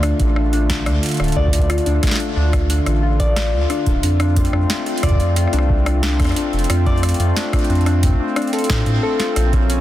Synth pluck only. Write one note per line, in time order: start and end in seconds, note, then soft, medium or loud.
0.03 0.09 D4 loud
0.36 0.47 D4 medium
0.53 0.63 D4 loud
0.87 0.97 D4 medium
1.20 1.30 F4 medium
1.36 1.47 D5 loud
1.70 1.76 F4 medium
1.86 1.93 D4 loud
2.20 2.30 D4 medium
2.36 2.47 D4 loud
2.70 2.80 D4 medium
3.03 3.13 F4 medium
3.20 3.30 D5 loud
3.53 3.59 F4 medium
3.70 3.76 D4 loud
4.03 4.13 D4 medium
4.20 4.30 D4 loud
4.53 4.63 D4 medium
4.87 4.97 F4 medium
5.03 5.13 D5 loud
5.37 5.43 F4 medium
5.53 5.59 D4 loud
5.86 5.97 D4 medium
6.03 6.13 D4 loud
6.36 6.47 D4 medium
6.70 6.80 F4 medium
6.86 6.97 D5 loud
7.20 7.26 F4 medium
7.36 7.43 D4 loud
7.70 7.80 D4 medium
7.86 7.97 D4 loud
8.20 8.30 D4 medium
8.37 8.47 D4 loud
8.53 8.59 A4 medium
8.70 8.85 D4 medium
9.03 9.13 A4 loud
9.20 9.30 F4 medium
9.53 9.63 C#4 medium
9.70 9.80 C#4 loud